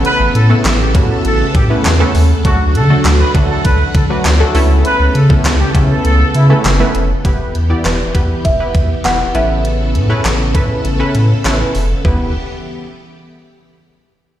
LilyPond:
<<
  \new Staff \with { instrumentName = "Marimba" } { \time 4/4 \key e \dorian \tempo 4 = 100 r1 | r1 | r1 | r4 b'4 e''4 fis''8 e''8~ |
e''4. r2 r8 | r1 | }
  \new Staff \with { instrumentName = "Horn section" } { \time 4/4 \key e \dorian b'8 a'8 r16 g'16 r16 a'16 a'8 g'16 r4 r16 | fis'8 a'8 r16 b'16 r16 a'16 b'8 a'16 r4 r16 | b'8 a'8 r16 g'16 r16 a'16 a'8 e'16 r4 r16 | r1 |
r1 | r1 | }
  \new Staff \with { instrumentName = "Analog polysynth" } { \time 4/4 \key e \dorian <a b cis' e' a'>8 r16 <a b cis' e' a'>8 r16 <a b cis' e' fis'>8. r8 <a b cis' e' b'>16 r16 <a b cis' e' a'>8 r16 | <fis a d' fis' a'>8 r16 <fis a d' fis' a'>8 r16 <fis a d' fis' a'>8. r8 <fis a d' fis' b'>16 r16 <fis a d' fis' a'>16 <a b cis' e' a'>8~ | <a b cis' e' a'>8 r16 <a b cis' e' a'>8 r16 <a b cis' e' a'>8. r8 <a b cis' e' a'>16 r16 <a b cis' e' b'>8 r16 | <b e' g' b'>8 r16 <b e' g' d''>8 r16 <b e' g' b'>8 r16 <b e' g' b'>8 r16 <b e' g' b'>8 <cis' e' a' b'>8~ |
<cis' e' a' b'>8 r16 <cis' e' a' b'>8 r16 <cis' e' a' b'>8 r16 <cis' e' a' b'>8 r16 <cis' e' a' b'>8. r16 | <b e' g' b'>8 r2. r8 | }
  \new Staff \with { instrumentName = "String machine" } { \time 4/4 \key e \dorian << { <cis a'>1 | <d fis'>2.~ <d fis'>8 <cis a'>8~ | <cis a'>1 | <e g'>2.~ <e g'>8 <cis a'>8~ |
<cis a'>1 | <e b g'>8 r2. r8 | } \\ { b1 | a2.~ a8 b8~ | b1 | b1~ |
b1 | r1 | } >> }
  \new Staff \with { instrumentName = "Sub bass" } { \clef bass \time 4/4 \key e \dorian r16 a,,16 a,8 a,,8 a,8 a,,8 a,8 e,8 dis,8 | d,16 d,16 d8 d,8 d8 d,8 d8 d,8 cis,8~ | cis,16 cis,16 cis8 cis,8 cis8 cis,8 cis8 fis,,8 f,,8 | e,,8 e,8 e,,8 e,8 e,,8 e,8 e,,8 a,,8~ |
a,,8 a,8 a,,8 a,8 a,,8 a,8 a,,8 f,,8 | e,,8 r2. r8 | }
  \new DrumStaff \with { instrumentName = "Drums" } \drummode { \time 4/4 hh8 hh8 <hc hh sn>8 <hh bd>8 hh8 <hh bd>8 <hc hh sn>8 hho8 | <hh bd>8 hh8 <hc hh sn>8 <hh bd>8 <hh bd>8 <hh bd>8 <hc hh sn>8 hho8 | hh8 hh16 bd16 <hc hh sn>8 <hh bd>8 hh8 hh8 <hc hh sn>8 hh8 | <hh bd>8 hh8 <hc hh sn>8 <hh bd>8 <hh bd>8 <hh bd>8 <hc hh sn>8 hh8 |
hh8 hh8 <hc hh sn>8 <hh bd>8 hh8 hh8 <hc hh sn>8 hho8 | <bd tomfh>4 r4 r4 r4 | }
>>